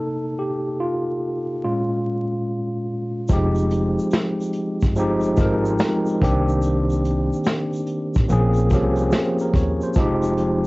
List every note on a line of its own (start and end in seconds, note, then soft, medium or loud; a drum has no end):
0.00 1.59 C3 soft
0.00 1.59 A#3 soft
0.00 1.60 D#4 medium
0.00 0.41 A4 medium
0.39 0.81 G4 medium
0.80 1.63 F4 medium
1.64 2.24 A#2 medium
1.64 2.24 G#3 medium
1.64 2.24 C#4 medium
1.64 2.85 F4 medium
3.28 3.94 F1 medium
3.28 4.85 F3 medium
3.28 4.85 G#3 medium
3.28 4.86 C4 medium
3.28 4.86 D#4 medium
3.28 kick loud
3.28 shaker medium
3.33 4.87 G4 loud
3.55 shaker soft
3.58 shaker soft
3.71 closed hi-hat medium
3.71 shaker soft
3.99 shaker medium
4.11 snare loud
4.11 shaker medium
4.40 shaker medium
4.42 shaker soft
4.53 closed hi-hat medium
4.53 shaker soft
4.81 5.35 G1 medium
4.81 kick medium
4.81 shaker soft
4.96 5.35 F3 medium
4.96 5.35 G#3 medium
4.96 5.36 C4 medium
4.96 5.36 D#4 medium
4.96 5.37 G4 medium
4.96 shaker medium
5.20 shaker soft
5.23 shaker soft
5.37 5.77 G#1 medium
5.37 6.21 F3 medium
5.37 6.21 G#3 medium
5.37 6.21 C4 medium
5.37 6.22 D#4 medium
5.37 kick medium
5.37 closed hi-hat medium
5.37 shaker soft
5.41 6.23 A#4 medium
5.65 shaker soft
5.79 snare loud
5.79 shaker medium
5.82 shaker medium
6.06 shaker soft
6.09 shaker soft
6.20 7.28 C2 medium
6.20 7.76 D#3 medium
6.20 7.77 A#3 medium
6.20 7.77 C4 medium
6.20 7.78 D4 medium
6.20 7.78 G4 loud
6.20 kick loud
6.20 closed hi-hat medium
6.20 shaker medium
6.49 shaker soft
6.62 shaker medium
6.89 shaker soft
6.92 shaker soft
7.05 closed hi-hat medium
7.05 shaker soft
7.33 shaker soft
7.44 snare loud
7.44 shaker medium
7.73 shaker soft
7.75 shaker soft
7.87 closed hi-hat medium
7.87 shaker soft
8.14 8.29 A1 medium
8.14 kick medium
8.14 shaker medium
8.28 8.71 A#1 loud
8.28 8.68 F3 medium
8.28 8.68 A#3 medium
8.28 8.69 C4 medium
8.28 8.69 C#4 medium
8.28 shaker medium
8.32 8.70 G#4 loud
8.53 shaker soft
8.56 shaker soft
8.70 9.10 C2 medium
8.70 9.87 F3 medium
8.70 9.88 A#3 medium
8.70 9.88 C4 medium
8.70 kick medium
8.70 closed hi-hat medium
8.70 shaker soft
8.74 9.89 C#4 medium
8.74 9.89 G4 medium
8.96 shaker soft
8.98 shaker soft
9.12 snare loud
9.12 shaker medium
9.15 shaker medium
9.39 shaker soft
9.41 9.55 A#4 medium
9.41 shaker soft
9.54 9.79 D#2 medium
9.54 9.81 C#5 medium
9.54 kick medium
9.54 closed hi-hat medium
9.54 shaker medium
9.81 10.22 C5 medium
9.81 shaker soft
9.94 10.61 F1 medium
9.94 10.67 F3 medium
9.94 10.67 G#3 medium
9.94 10.67 C4 medium
9.94 kick loud
9.94 shaker medium
9.99 10.67 D#4 medium
9.99 10.67 G4 loud
10.22 shaker soft
10.37 closed hi-hat medium
10.37 shaker soft